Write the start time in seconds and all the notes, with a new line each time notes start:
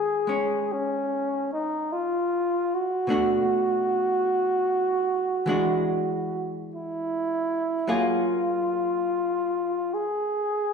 Already playing: D#3 G#3 C#4 G#4
0.27 G#3 C#4
0.72 C#4
1.53 D#4
1.93 F4
2.74 F#4
3.07 B2 A3 D4
3.12 F#4
5.46 E3 G#3 D4
5.50 F#4
6.75 E4
7.87 F#3 A#3 F4 G#4
7.96 F4
9.94 G#4